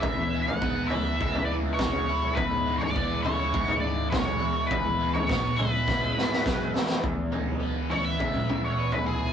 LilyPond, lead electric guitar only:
\new Staff \with { instrumentName = "Lead electric guitar" } { \time 4/4 \key e \major \tempo 4 = 103 e''8. fis''8. e''4 d''8 cis''4 | b'8. cis''16 d''8 cis''4 d''8 cis''4 | b'8. cis''8. b'2 r8 | r4. cis''16 e''4 cis''8 b'16 gis'8 | }